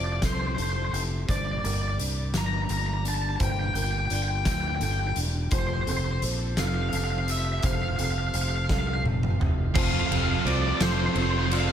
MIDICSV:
0, 0, Header, 1, 9, 480
1, 0, Start_track
1, 0, Key_signature, -1, "major"
1, 0, Tempo, 705882
1, 874, Time_signature, 6, 3, 24, 8
1, 7970, End_track
2, 0, Start_track
2, 0, Title_t, "Overdriven electric guitar"
2, 0, Program_c, 0, 29
2, 29, Note_on_c, 0, 74, 64
2, 81, Note_off_c, 0, 74, 0
2, 84, Note_on_c, 0, 74, 55
2, 139, Note_off_c, 0, 74, 0
2, 171, Note_on_c, 0, 72, 67
2, 220, Note_off_c, 0, 72, 0
2, 222, Note_on_c, 0, 72, 52
2, 265, Note_off_c, 0, 72, 0
2, 268, Note_on_c, 0, 72, 60
2, 317, Note_off_c, 0, 72, 0
2, 320, Note_on_c, 0, 72, 51
2, 369, Note_off_c, 0, 72, 0
2, 371, Note_on_c, 0, 72, 60
2, 422, Note_off_c, 0, 72, 0
2, 424, Note_on_c, 0, 72, 52
2, 473, Note_off_c, 0, 72, 0
2, 476, Note_on_c, 0, 72, 61
2, 517, Note_off_c, 0, 72, 0
2, 520, Note_on_c, 0, 72, 50
2, 571, Note_off_c, 0, 72, 0
2, 576, Note_on_c, 0, 72, 63
2, 619, Note_off_c, 0, 72, 0
2, 622, Note_on_c, 0, 72, 49
2, 672, Note_off_c, 0, 72, 0
2, 879, Note_on_c, 0, 74, 79
2, 921, Note_off_c, 0, 74, 0
2, 923, Note_on_c, 0, 74, 56
2, 973, Note_off_c, 0, 74, 0
2, 985, Note_on_c, 0, 74, 63
2, 1027, Note_off_c, 0, 74, 0
2, 1030, Note_on_c, 0, 74, 62
2, 1075, Note_off_c, 0, 74, 0
2, 1078, Note_on_c, 0, 74, 70
2, 1118, Note_off_c, 0, 74, 0
2, 1120, Note_on_c, 0, 74, 59
2, 1170, Note_off_c, 0, 74, 0
2, 1183, Note_on_c, 0, 74, 66
2, 1230, Note_off_c, 0, 74, 0
2, 1233, Note_on_c, 0, 74, 58
2, 1275, Note_off_c, 0, 74, 0
2, 1278, Note_on_c, 0, 74, 62
2, 1328, Note_off_c, 0, 74, 0
2, 1615, Note_on_c, 0, 82, 84
2, 1671, Note_off_c, 0, 82, 0
2, 1674, Note_on_c, 0, 82, 65
2, 1725, Note_off_c, 0, 82, 0
2, 1728, Note_on_c, 0, 82, 74
2, 1780, Note_off_c, 0, 82, 0
2, 1783, Note_on_c, 0, 82, 72
2, 1837, Note_off_c, 0, 82, 0
2, 1839, Note_on_c, 0, 82, 85
2, 1887, Note_off_c, 0, 82, 0
2, 1890, Note_on_c, 0, 82, 68
2, 1945, Note_off_c, 0, 82, 0
2, 1948, Note_on_c, 0, 82, 75
2, 1994, Note_off_c, 0, 82, 0
2, 1997, Note_on_c, 0, 82, 66
2, 2052, Note_off_c, 0, 82, 0
2, 2096, Note_on_c, 0, 81, 87
2, 2135, Note_off_c, 0, 81, 0
2, 2138, Note_on_c, 0, 81, 71
2, 2185, Note_off_c, 0, 81, 0
2, 2187, Note_on_c, 0, 81, 83
2, 2233, Note_off_c, 0, 81, 0
2, 2236, Note_on_c, 0, 81, 72
2, 2283, Note_off_c, 0, 81, 0
2, 2285, Note_on_c, 0, 81, 75
2, 2330, Note_off_c, 0, 81, 0
2, 2333, Note_on_c, 0, 79, 78
2, 2377, Note_off_c, 0, 79, 0
2, 2380, Note_on_c, 0, 79, 57
2, 2433, Note_off_c, 0, 79, 0
2, 2443, Note_on_c, 0, 79, 68
2, 2484, Note_off_c, 0, 79, 0
2, 2487, Note_on_c, 0, 79, 60
2, 2540, Note_off_c, 0, 79, 0
2, 2543, Note_on_c, 0, 79, 67
2, 2596, Note_off_c, 0, 79, 0
2, 2600, Note_on_c, 0, 79, 65
2, 2653, Note_off_c, 0, 79, 0
2, 2659, Note_on_c, 0, 79, 78
2, 2704, Note_off_c, 0, 79, 0
2, 2707, Note_on_c, 0, 79, 62
2, 2755, Note_off_c, 0, 79, 0
2, 2758, Note_on_c, 0, 79, 76
2, 2809, Note_off_c, 0, 79, 0
2, 2811, Note_on_c, 0, 79, 71
2, 2864, Note_off_c, 0, 79, 0
2, 2872, Note_on_c, 0, 79, 74
2, 2908, Note_off_c, 0, 79, 0
2, 2911, Note_on_c, 0, 79, 64
2, 2962, Note_off_c, 0, 79, 0
2, 2965, Note_on_c, 0, 79, 73
2, 3018, Note_off_c, 0, 79, 0
2, 3022, Note_on_c, 0, 79, 67
2, 3071, Note_off_c, 0, 79, 0
2, 3073, Note_on_c, 0, 79, 76
2, 3126, Note_off_c, 0, 79, 0
2, 3134, Note_on_c, 0, 79, 61
2, 3178, Note_off_c, 0, 79, 0
2, 3181, Note_on_c, 0, 79, 77
2, 3225, Note_off_c, 0, 79, 0
2, 3228, Note_on_c, 0, 79, 61
2, 3281, Note_off_c, 0, 79, 0
2, 3286, Note_on_c, 0, 79, 75
2, 3338, Note_off_c, 0, 79, 0
2, 3340, Note_on_c, 0, 79, 58
2, 3393, Note_off_c, 0, 79, 0
2, 3395, Note_on_c, 0, 79, 71
2, 3447, Note_off_c, 0, 79, 0
2, 3449, Note_on_c, 0, 79, 61
2, 3502, Note_off_c, 0, 79, 0
2, 3752, Note_on_c, 0, 72, 117
2, 3796, Note_off_c, 0, 72, 0
2, 3798, Note_on_c, 0, 72, 81
2, 3849, Note_off_c, 0, 72, 0
2, 3855, Note_on_c, 0, 72, 99
2, 3899, Note_off_c, 0, 72, 0
2, 3902, Note_on_c, 0, 72, 98
2, 3950, Note_off_c, 0, 72, 0
2, 3953, Note_on_c, 0, 72, 103
2, 4003, Note_off_c, 0, 72, 0
2, 4011, Note_on_c, 0, 72, 88
2, 4055, Note_off_c, 0, 72, 0
2, 4058, Note_on_c, 0, 72, 97
2, 4108, Note_off_c, 0, 72, 0
2, 4111, Note_on_c, 0, 72, 88
2, 4153, Note_off_c, 0, 72, 0
2, 4156, Note_on_c, 0, 72, 89
2, 4206, Note_off_c, 0, 72, 0
2, 4483, Note_on_c, 0, 77, 103
2, 4525, Note_off_c, 0, 77, 0
2, 4528, Note_on_c, 0, 77, 72
2, 4578, Note_off_c, 0, 77, 0
2, 4586, Note_on_c, 0, 77, 84
2, 4633, Note_off_c, 0, 77, 0
2, 4636, Note_on_c, 0, 77, 74
2, 4682, Note_off_c, 0, 77, 0
2, 4684, Note_on_c, 0, 77, 93
2, 4728, Note_off_c, 0, 77, 0
2, 4730, Note_on_c, 0, 77, 81
2, 4780, Note_off_c, 0, 77, 0
2, 4785, Note_on_c, 0, 77, 90
2, 4828, Note_off_c, 0, 77, 0
2, 4831, Note_on_c, 0, 77, 68
2, 4881, Note_off_c, 0, 77, 0
2, 4886, Note_on_c, 0, 77, 83
2, 4936, Note_off_c, 0, 77, 0
2, 4965, Note_on_c, 0, 76, 91
2, 5013, Note_off_c, 0, 76, 0
2, 5017, Note_on_c, 0, 76, 72
2, 5061, Note_off_c, 0, 76, 0
2, 5064, Note_on_c, 0, 76, 91
2, 5113, Note_off_c, 0, 76, 0
2, 5115, Note_on_c, 0, 76, 77
2, 5162, Note_off_c, 0, 76, 0
2, 5165, Note_on_c, 0, 76, 78
2, 5203, Note_off_c, 0, 76, 0
2, 5205, Note_on_c, 0, 77, 94
2, 5256, Note_off_c, 0, 77, 0
2, 5259, Note_on_c, 0, 77, 72
2, 5310, Note_off_c, 0, 77, 0
2, 5318, Note_on_c, 0, 77, 79
2, 5359, Note_off_c, 0, 77, 0
2, 5362, Note_on_c, 0, 77, 78
2, 5412, Note_off_c, 0, 77, 0
2, 5415, Note_on_c, 0, 77, 82
2, 5463, Note_off_c, 0, 77, 0
2, 5466, Note_on_c, 0, 77, 82
2, 5509, Note_off_c, 0, 77, 0
2, 5512, Note_on_c, 0, 77, 94
2, 5561, Note_off_c, 0, 77, 0
2, 5564, Note_on_c, 0, 77, 84
2, 5615, Note_off_c, 0, 77, 0
2, 5623, Note_on_c, 0, 77, 91
2, 5671, Note_off_c, 0, 77, 0
2, 5673, Note_on_c, 0, 77, 78
2, 5719, Note_off_c, 0, 77, 0
2, 5722, Note_on_c, 0, 77, 90
2, 5768, Note_off_c, 0, 77, 0
2, 5771, Note_on_c, 0, 77, 80
2, 5816, Note_off_c, 0, 77, 0
2, 5819, Note_on_c, 0, 77, 92
2, 5870, Note_off_c, 0, 77, 0
2, 5880, Note_on_c, 0, 77, 77
2, 5923, Note_off_c, 0, 77, 0
2, 5926, Note_on_c, 0, 77, 88
2, 5973, Note_off_c, 0, 77, 0
2, 5976, Note_on_c, 0, 77, 77
2, 6028, Note_off_c, 0, 77, 0
2, 6034, Note_on_c, 0, 77, 86
2, 6073, Note_off_c, 0, 77, 0
2, 6076, Note_on_c, 0, 77, 67
2, 6127, Note_off_c, 0, 77, 0
2, 6628, Note_on_c, 0, 77, 97
2, 6680, Note_off_c, 0, 77, 0
2, 6682, Note_on_c, 0, 77, 73
2, 6735, Note_off_c, 0, 77, 0
2, 6738, Note_on_c, 0, 77, 93
2, 6793, Note_off_c, 0, 77, 0
2, 6797, Note_on_c, 0, 77, 78
2, 6839, Note_off_c, 0, 77, 0
2, 6842, Note_on_c, 0, 77, 98
2, 6897, Note_off_c, 0, 77, 0
2, 6909, Note_on_c, 0, 77, 78
2, 6959, Note_off_c, 0, 77, 0
2, 6962, Note_on_c, 0, 77, 94
2, 7010, Note_off_c, 0, 77, 0
2, 7013, Note_on_c, 0, 77, 82
2, 7066, Note_off_c, 0, 77, 0
2, 7069, Note_on_c, 0, 77, 90
2, 7112, Note_on_c, 0, 74, 84
2, 7124, Note_off_c, 0, 77, 0
2, 7157, Note_off_c, 0, 74, 0
2, 7160, Note_on_c, 0, 74, 68
2, 7209, Note_off_c, 0, 74, 0
2, 7220, Note_on_c, 0, 74, 82
2, 7258, Note_off_c, 0, 74, 0
2, 7261, Note_on_c, 0, 74, 71
2, 7303, Note_off_c, 0, 74, 0
2, 7306, Note_on_c, 0, 74, 75
2, 7355, Note_off_c, 0, 74, 0
2, 7360, Note_on_c, 0, 72, 85
2, 7414, Note_off_c, 0, 72, 0
2, 7419, Note_on_c, 0, 72, 67
2, 7464, Note_off_c, 0, 72, 0
2, 7467, Note_on_c, 0, 72, 79
2, 7518, Note_off_c, 0, 72, 0
2, 7520, Note_on_c, 0, 72, 74
2, 7574, Note_off_c, 0, 72, 0
2, 7576, Note_on_c, 0, 72, 88
2, 7630, Note_off_c, 0, 72, 0
2, 7633, Note_on_c, 0, 72, 70
2, 7686, Note_off_c, 0, 72, 0
2, 7689, Note_on_c, 0, 72, 83
2, 7739, Note_off_c, 0, 72, 0
2, 7742, Note_on_c, 0, 72, 70
2, 7788, Note_off_c, 0, 72, 0
2, 7791, Note_on_c, 0, 72, 68
2, 7839, Note_on_c, 0, 77, 102
2, 7845, Note_off_c, 0, 72, 0
2, 7886, Note_off_c, 0, 77, 0
2, 7888, Note_on_c, 0, 77, 85
2, 7936, Note_off_c, 0, 77, 0
2, 7939, Note_on_c, 0, 77, 104
2, 7970, Note_off_c, 0, 77, 0
2, 7970, End_track
3, 0, Start_track
3, 0, Title_t, "Felt piano"
3, 0, Program_c, 1, 0
3, 0, Note_on_c, 1, 72, 69
3, 154, Note_on_c, 1, 69, 76
3, 156, Note_off_c, 1, 72, 0
3, 634, Note_off_c, 1, 69, 0
3, 871, Note_on_c, 1, 72, 78
3, 1110, Note_on_c, 1, 70, 62
3, 1113, Note_off_c, 1, 72, 0
3, 1349, Note_on_c, 1, 74, 72
3, 1352, Note_off_c, 1, 70, 0
3, 1592, Note_off_c, 1, 74, 0
3, 2308, Note_on_c, 1, 72, 82
3, 2547, Note_on_c, 1, 70, 67
3, 2551, Note_off_c, 1, 72, 0
3, 2791, Note_off_c, 1, 70, 0
3, 2795, Note_on_c, 1, 74, 73
3, 3035, Note_off_c, 1, 74, 0
3, 3758, Note_on_c, 1, 72, 86
3, 3992, Note_on_c, 1, 69, 75
3, 3997, Note_off_c, 1, 72, 0
3, 4234, Note_off_c, 1, 69, 0
3, 4239, Note_on_c, 1, 72, 82
3, 4476, Note_on_c, 1, 69, 82
3, 4477, Note_off_c, 1, 72, 0
3, 4955, Note_off_c, 1, 69, 0
3, 5196, Note_on_c, 1, 72, 88
3, 5436, Note_off_c, 1, 72, 0
3, 5436, Note_on_c, 1, 69, 73
3, 5671, Note_on_c, 1, 72, 80
3, 5676, Note_off_c, 1, 69, 0
3, 5911, Note_on_c, 1, 69, 87
3, 5913, Note_off_c, 1, 72, 0
3, 6393, Note_off_c, 1, 69, 0
3, 6625, Note_on_c, 1, 72, 89
3, 7094, Note_off_c, 1, 72, 0
3, 7104, Note_on_c, 1, 72, 83
3, 7348, Note_off_c, 1, 72, 0
3, 7350, Note_on_c, 1, 69, 90
3, 7830, Note_off_c, 1, 69, 0
3, 7834, Note_on_c, 1, 74, 78
3, 7970, Note_off_c, 1, 74, 0
3, 7970, End_track
4, 0, Start_track
4, 0, Title_t, "Distorted electric guitar"
4, 0, Program_c, 2, 30
4, 6633, Note_on_c, 2, 53, 91
4, 6642, Note_on_c, 2, 57, 85
4, 6643, Note_on_c, 2, 60, 93
4, 6646, Note_on_c, 2, 65, 92
4, 6654, Note_on_c, 2, 69, 102
4, 6866, Note_off_c, 2, 69, 0
4, 6874, Note_on_c, 2, 69, 83
4, 6878, Note_off_c, 2, 65, 0
4, 6886, Note_off_c, 2, 60, 0
4, 6886, Note_on_c, 2, 65, 71
4, 6894, Note_on_c, 2, 60, 69
4, 7105, Note_off_c, 2, 57, 0
4, 7111, Note_off_c, 2, 60, 0
4, 7113, Note_off_c, 2, 53, 0
4, 7113, Note_on_c, 2, 57, 77
4, 7117, Note_off_c, 2, 65, 0
4, 7120, Note_on_c, 2, 60, 79
4, 7122, Note_off_c, 2, 69, 0
4, 7125, Note_on_c, 2, 65, 78
4, 7130, Note_on_c, 2, 69, 82
4, 7347, Note_off_c, 2, 69, 0
4, 7355, Note_on_c, 2, 69, 80
4, 7360, Note_off_c, 2, 65, 0
4, 7368, Note_on_c, 2, 65, 63
4, 7369, Note_off_c, 2, 60, 0
4, 7377, Note_on_c, 2, 60, 57
4, 7585, Note_off_c, 2, 57, 0
4, 7589, Note_off_c, 2, 60, 0
4, 7593, Note_on_c, 2, 57, 77
4, 7596, Note_off_c, 2, 65, 0
4, 7597, Note_on_c, 2, 60, 78
4, 7603, Note_off_c, 2, 69, 0
4, 7605, Note_on_c, 2, 65, 85
4, 7611, Note_on_c, 2, 69, 82
4, 7821, Note_off_c, 2, 69, 0
4, 7830, Note_on_c, 2, 69, 80
4, 7833, Note_off_c, 2, 65, 0
4, 7841, Note_on_c, 2, 65, 71
4, 7842, Note_off_c, 2, 60, 0
4, 7850, Note_on_c, 2, 60, 67
4, 7970, Note_off_c, 2, 57, 0
4, 7970, Note_off_c, 2, 60, 0
4, 7970, Note_off_c, 2, 65, 0
4, 7970, Note_off_c, 2, 69, 0
4, 7970, End_track
5, 0, Start_track
5, 0, Title_t, "Clean electric guitar"
5, 0, Program_c, 3, 27
5, 0, Note_on_c, 3, 53, 66
5, 0, Note_on_c, 3, 60, 61
5, 0, Note_on_c, 3, 64, 59
5, 0, Note_on_c, 3, 69, 68
5, 140, Note_off_c, 3, 60, 0
5, 148, Note_on_c, 3, 60, 62
5, 382, Note_off_c, 3, 69, 0
5, 384, Note_on_c, 3, 69, 69
5, 624, Note_off_c, 3, 64, 0
5, 632, Note_on_c, 3, 64, 59
5, 634, Note_off_c, 3, 53, 0
5, 871, Note_off_c, 3, 60, 0
5, 873, Note_off_c, 3, 64, 0
5, 875, Note_on_c, 3, 43, 65
5, 895, Note_off_c, 3, 69, 0
5, 1115, Note_on_c, 3, 58, 61
5, 1346, Note_on_c, 3, 62, 57
5, 1590, Note_off_c, 3, 58, 0
5, 1598, Note_on_c, 3, 58, 64
5, 2063, Note_off_c, 3, 62, 0
5, 2071, Note_on_c, 3, 62, 61
5, 2075, Note_off_c, 3, 43, 0
5, 2306, Note_on_c, 3, 43, 65
5, 2538, Note_off_c, 3, 58, 0
5, 2546, Note_on_c, 3, 58, 62
5, 2785, Note_off_c, 3, 62, 0
5, 2793, Note_on_c, 3, 62, 57
5, 3026, Note_off_c, 3, 58, 0
5, 3034, Note_on_c, 3, 58, 67
5, 3272, Note_on_c, 3, 69, 77
5, 3501, Note_off_c, 3, 62, 0
5, 3510, Note_on_c, 3, 62, 66
5, 3511, Note_off_c, 3, 43, 0
5, 3746, Note_on_c, 3, 53, 73
5, 3753, Note_off_c, 3, 62, 0
5, 3755, Note_off_c, 3, 58, 0
5, 3988, Note_on_c, 3, 60, 68
5, 4462, Note_off_c, 3, 60, 0
5, 4465, Note_on_c, 3, 60, 73
5, 4704, Note_off_c, 3, 69, 0
5, 4707, Note_on_c, 3, 69, 79
5, 5191, Note_off_c, 3, 53, 0
5, 5194, Note_on_c, 3, 53, 71
5, 5424, Note_off_c, 3, 60, 0
5, 5432, Note_on_c, 3, 60, 70
5, 5900, Note_off_c, 3, 60, 0
5, 5908, Note_on_c, 3, 60, 72
5, 5911, Note_off_c, 3, 69, 0
5, 6148, Note_on_c, 3, 69, 73
5, 6387, Note_on_c, 3, 64, 66
5, 6393, Note_off_c, 3, 53, 0
5, 6630, Note_off_c, 3, 60, 0
5, 6630, Note_off_c, 3, 64, 0
5, 6631, Note_off_c, 3, 69, 0
5, 6631, Note_on_c, 3, 53, 75
5, 6858, Note_off_c, 3, 53, 0
5, 6867, Note_on_c, 3, 53, 69
5, 7109, Note_on_c, 3, 65, 67
5, 7339, Note_off_c, 3, 53, 0
5, 7347, Note_on_c, 3, 53, 77
5, 7589, Note_on_c, 3, 60, 70
5, 7819, Note_off_c, 3, 53, 0
5, 7827, Note_on_c, 3, 53, 68
5, 7970, Note_off_c, 3, 53, 0
5, 7970, Note_off_c, 3, 60, 0
5, 7970, Note_off_c, 3, 65, 0
5, 7970, End_track
6, 0, Start_track
6, 0, Title_t, "String section"
6, 0, Program_c, 4, 48
6, 0, Note_on_c, 4, 53, 62
6, 0, Note_on_c, 4, 60, 50
6, 0, Note_on_c, 4, 67, 56
6, 0, Note_on_c, 4, 69, 67
6, 848, Note_off_c, 4, 60, 0
6, 855, Note_off_c, 4, 69, 0
6, 856, Note_off_c, 4, 53, 0
6, 871, Note_on_c, 4, 58, 59
6, 874, Note_on_c, 4, 55, 65
6, 2293, Note_off_c, 4, 67, 0
6, 2310, Note_on_c, 4, 65, 57
6, 3727, Note_off_c, 4, 58, 0
6, 3729, Note_off_c, 4, 55, 0
6, 3739, Note_off_c, 4, 65, 0
6, 3756, Note_on_c, 4, 53, 66
6, 3758, Note_on_c, 4, 60, 62
6, 3759, Note_on_c, 4, 67, 67
6, 3763, Note_on_c, 4, 69, 77
6, 6607, Note_off_c, 4, 53, 0
6, 6608, Note_off_c, 4, 60, 0
6, 6609, Note_off_c, 4, 67, 0
6, 6611, Note_off_c, 4, 69, 0
6, 7970, End_track
7, 0, Start_track
7, 0, Title_t, "Distorted electric guitar"
7, 0, Program_c, 5, 30
7, 7108, Note_on_c, 5, 53, 70
7, 7356, Note_off_c, 5, 53, 0
7, 7364, Note_on_c, 5, 53, 84
7, 7575, Note_off_c, 5, 53, 0
7, 7583, Note_on_c, 5, 53, 77
7, 7970, Note_off_c, 5, 53, 0
7, 7970, End_track
8, 0, Start_track
8, 0, Title_t, "Fingered electric bass"
8, 0, Program_c, 6, 33
8, 0, Note_on_c, 6, 29, 77
8, 140, Note_off_c, 6, 29, 0
8, 152, Note_on_c, 6, 36, 76
8, 380, Note_off_c, 6, 36, 0
8, 388, Note_on_c, 6, 29, 78
8, 618, Note_off_c, 6, 29, 0
8, 630, Note_on_c, 6, 29, 75
8, 860, Note_off_c, 6, 29, 0
8, 873, Note_on_c, 6, 31, 80
8, 1102, Note_off_c, 6, 31, 0
8, 1112, Note_on_c, 6, 31, 74
8, 1341, Note_off_c, 6, 31, 0
8, 1358, Note_on_c, 6, 36, 74
8, 1584, Note_off_c, 6, 36, 0
8, 1591, Note_on_c, 6, 31, 76
8, 1820, Note_off_c, 6, 31, 0
8, 1835, Note_on_c, 6, 31, 85
8, 2291, Note_off_c, 6, 31, 0
8, 2313, Note_on_c, 6, 31, 88
8, 2541, Note_off_c, 6, 31, 0
8, 2545, Note_on_c, 6, 31, 82
8, 2778, Note_off_c, 6, 31, 0
8, 2791, Note_on_c, 6, 31, 81
8, 3021, Note_off_c, 6, 31, 0
8, 3033, Note_on_c, 6, 38, 77
8, 3262, Note_off_c, 6, 38, 0
8, 3273, Note_on_c, 6, 31, 87
8, 3502, Note_off_c, 6, 31, 0
8, 3510, Note_on_c, 6, 28, 86
8, 3740, Note_off_c, 6, 28, 0
8, 3751, Note_on_c, 6, 29, 96
8, 3981, Note_off_c, 6, 29, 0
8, 3995, Note_on_c, 6, 29, 84
8, 4223, Note_off_c, 6, 29, 0
8, 4233, Note_on_c, 6, 34, 84
8, 4462, Note_off_c, 6, 34, 0
8, 4468, Note_on_c, 6, 29, 84
8, 4700, Note_off_c, 6, 29, 0
8, 4714, Note_on_c, 6, 29, 89
8, 5170, Note_off_c, 6, 29, 0
8, 5190, Note_on_c, 6, 29, 98
8, 5420, Note_off_c, 6, 29, 0
8, 5434, Note_on_c, 6, 29, 86
8, 5662, Note_off_c, 6, 29, 0
8, 5671, Note_on_c, 6, 29, 83
8, 5901, Note_off_c, 6, 29, 0
8, 5914, Note_on_c, 6, 36, 90
8, 6142, Note_off_c, 6, 36, 0
8, 6146, Note_on_c, 6, 29, 91
8, 6378, Note_off_c, 6, 29, 0
8, 6389, Note_on_c, 6, 29, 86
8, 6619, Note_off_c, 6, 29, 0
8, 6632, Note_on_c, 6, 29, 102
8, 6808, Note_off_c, 6, 29, 0
8, 6871, Note_on_c, 6, 29, 90
8, 7047, Note_off_c, 6, 29, 0
8, 7103, Note_on_c, 6, 36, 88
8, 7282, Note_off_c, 6, 36, 0
8, 7346, Note_on_c, 6, 29, 89
8, 7524, Note_off_c, 6, 29, 0
8, 7581, Note_on_c, 6, 29, 97
8, 7936, Note_off_c, 6, 29, 0
8, 7970, End_track
9, 0, Start_track
9, 0, Title_t, "Drums"
9, 150, Note_on_c, 9, 38, 93
9, 150, Note_on_c, 9, 42, 80
9, 152, Note_on_c, 9, 36, 72
9, 218, Note_off_c, 9, 38, 0
9, 218, Note_off_c, 9, 42, 0
9, 220, Note_off_c, 9, 36, 0
9, 395, Note_on_c, 9, 42, 62
9, 463, Note_off_c, 9, 42, 0
9, 639, Note_on_c, 9, 42, 59
9, 707, Note_off_c, 9, 42, 0
9, 874, Note_on_c, 9, 36, 94
9, 879, Note_on_c, 9, 42, 84
9, 942, Note_off_c, 9, 36, 0
9, 947, Note_off_c, 9, 42, 0
9, 1120, Note_on_c, 9, 42, 69
9, 1188, Note_off_c, 9, 42, 0
9, 1356, Note_on_c, 9, 42, 66
9, 1424, Note_off_c, 9, 42, 0
9, 1590, Note_on_c, 9, 38, 100
9, 1590, Note_on_c, 9, 42, 85
9, 1658, Note_off_c, 9, 38, 0
9, 1658, Note_off_c, 9, 42, 0
9, 1829, Note_on_c, 9, 42, 64
9, 1897, Note_off_c, 9, 42, 0
9, 2075, Note_on_c, 9, 42, 64
9, 2143, Note_off_c, 9, 42, 0
9, 2311, Note_on_c, 9, 42, 83
9, 2313, Note_on_c, 9, 36, 102
9, 2379, Note_off_c, 9, 42, 0
9, 2381, Note_off_c, 9, 36, 0
9, 2552, Note_on_c, 9, 42, 64
9, 2620, Note_off_c, 9, 42, 0
9, 2789, Note_on_c, 9, 42, 60
9, 2857, Note_off_c, 9, 42, 0
9, 3029, Note_on_c, 9, 38, 102
9, 3029, Note_on_c, 9, 42, 82
9, 3032, Note_on_c, 9, 36, 72
9, 3097, Note_off_c, 9, 38, 0
9, 3097, Note_off_c, 9, 42, 0
9, 3100, Note_off_c, 9, 36, 0
9, 3270, Note_on_c, 9, 42, 62
9, 3338, Note_off_c, 9, 42, 0
9, 3507, Note_on_c, 9, 42, 59
9, 3575, Note_off_c, 9, 42, 0
9, 3745, Note_on_c, 9, 42, 80
9, 3751, Note_on_c, 9, 36, 105
9, 3813, Note_off_c, 9, 42, 0
9, 3819, Note_off_c, 9, 36, 0
9, 3993, Note_on_c, 9, 42, 61
9, 4061, Note_off_c, 9, 42, 0
9, 4231, Note_on_c, 9, 42, 64
9, 4299, Note_off_c, 9, 42, 0
9, 4468, Note_on_c, 9, 38, 100
9, 4468, Note_on_c, 9, 42, 80
9, 4536, Note_off_c, 9, 38, 0
9, 4536, Note_off_c, 9, 42, 0
9, 4710, Note_on_c, 9, 42, 67
9, 4778, Note_off_c, 9, 42, 0
9, 4950, Note_on_c, 9, 42, 62
9, 5018, Note_off_c, 9, 42, 0
9, 5185, Note_on_c, 9, 42, 92
9, 5191, Note_on_c, 9, 36, 100
9, 5253, Note_off_c, 9, 42, 0
9, 5259, Note_off_c, 9, 36, 0
9, 5431, Note_on_c, 9, 42, 68
9, 5499, Note_off_c, 9, 42, 0
9, 5669, Note_on_c, 9, 42, 70
9, 5737, Note_off_c, 9, 42, 0
9, 5910, Note_on_c, 9, 38, 59
9, 5912, Note_on_c, 9, 36, 78
9, 5978, Note_off_c, 9, 38, 0
9, 5980, Note_off_c, 9, 36, 0
9, 6157, Note_on_c, 9, 48, 72
9, 6225, Note_off_c, 9, 48, 0
9, 6278, Note_on_c, 9, 47, 70
9, 6346, Note_off_c, 9, 47, 0
9, 6399, Note_on_c, 9, 45, 83
9, 6467, Note_off_c, 9, 45, 0
9, 6634, Note_on_c, 9, 36, 121
9, 6637, Note_on_c, 9, 49, 126
9, 6702, Note_off_c, 9, 36, 0
9, 6705, Note_off_c, 9, 49, 0
9, 6879, Note_on_c, 9, 51, 75
9, 6947, Note_off_c, 9, 51, 0
9, 7116, Note_on_c, 9, 51, 72
9, 7184, Note_off_c, 9, 51, 0
9, 7348, Note_on_c, 9, 38, 113
9, 7348, Note_on_c, 9, 51, 106
9, 7416, Note_off_c, 9, 38, 0
9, 7416, Note_off_c, 9, 51, 0
9, 7585, Note_on_c, 9, 51, 77
9, 7653, Note_off_c, 9, 51, 0
9, 7830, Note_on_c, 9, 51, 80
9, 7898, Note_off_c, 9, 51, 0
9, 7970, End_track
0, 0, End_of_file